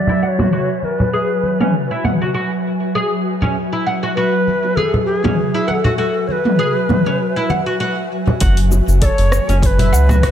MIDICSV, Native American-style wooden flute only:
0, 0, Header, 1, 2, 480
1, 0, Start_track
1, 0, Tempo, 606061
1, 901, Time_signature, 4, 2, 24, 8
1, 8166, End_track
2, 0, Start_track
2, 0, Title_t, "Native American-style wooden flute"
2, 0, Program_c, 0, 77
2, 0, Note_on_c, 0, 74, 88
2, 187, Note_off_c, 0, 74, 0
2, 187, Note_on_c, 0, 74, 77
2, 221, Note_on_c, 0, 73, 84
2, 229, Note_off_c, 0, 74, 0
2, 669, Note_on_c, 0, 71, 72
2, 680, Note_off_c, 0, 73, 0
2, 1384, Note_off_c, 0, 71, 0
2, 3290, Note_on_c, 0, 71, 106
2, 3768, Note_on_c, 0, 69, 93
2, 3780, Note_off_c, 0, 71, 0
2, 4001, Note_off_c, 0, 69, 0
2, 4005, Note_on_c, 0, 67, 91
2, 4100, Note_off_c, 0, 67, 0
2, 4100, Note_on_c, 0, 68, 91
2, 4493, Note_on_c, 0, 71, 79
2, 4505, Note_off_c, 0, 68, 0
2, 4519, Note_on_c, 0, 69, 86
2, 4527, Note_off_c, 0, 71, 0
2, 4726, Note_off_c, 0, 69, 0
2, 4731, Note_on_c, 0, 69, 89
2, 4968, Note_on_c, 0, 73, 85
2, 4979, Note_off_c, 0, 69, 0
2, 5005, Note_on_c, 0, 71, 92
2, 5013, Note_off_c, 0, 73, 0
2, 5934, Note_off_c, 0, 71, 0
2, 7138, Note_on_c, 0, 74, 106
2, 7171, Note_on_c, 0, 73, 115
2, 7179, Note_off_c, 0, 74, 0
2, 7588, Note_off_c, 0, 73, 0
2, 7617, Note_on_c, 0, 73, 98
2, 7651, Note_on_c, 0, 71, 106
2, 7659, Note_off_c, 0, 73, 0
2, 8166, Note_off_c, 0, 71, 0
2, 8166, End_track
0, 0, End_of_file